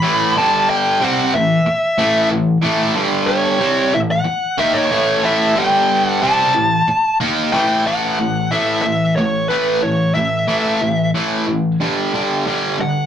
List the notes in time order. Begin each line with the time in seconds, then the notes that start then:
Already playing: B5
0.02 A2 E3 A3
0.37 G2 D3 G3 A5
0.70 G5
1.01 C3 G3 C4 F#5
1.34 A2 E3 E5
1.66 muted distorted electric guitar stroke
1.98 A2 E3 A3
2.30 A2 E3
2.62 A2 E3 A3
2.95 G2 D3 G3
3.28 C#5
3.60 C3 G3 C4
3.94 A2 E3 E5
4.11 F#5
4.26 muted distorted electric guitar stroke
4.58 D#3 A#3 D#4 E5
4.74 C#5
4.91 A2 E3 A3
5.23 A2 E3 A3 E5
5.55 G2 D3 G3 G5
6.05 F#5
6.21 C3 G3 C4 A5
6.54 A2 E3
6.88 muted distorted electric guitar stroke
7.20 D#3 A#3 D#4
7.53 A2 E3 A3 G5
7.86 A2 E3 A3 F#5
8.18 A2 E3
8.51 A2 E3 A3 E5
8.82 A2 E3 E5
9.16 A2 E3 C#5
9.48 A2 E3 A3 B4
9.82 A2 E3 C#5
10.14 A2 E3 E5
10.47 A2 E3 A3
10.81 A2 E3
11.14 A2 E3 A3
11.47 A2 E3
11.80 G2 D3 G3
12.13 G2 D3 G3
12.46 G2 D3 G3
12.78 G2 D3 F#5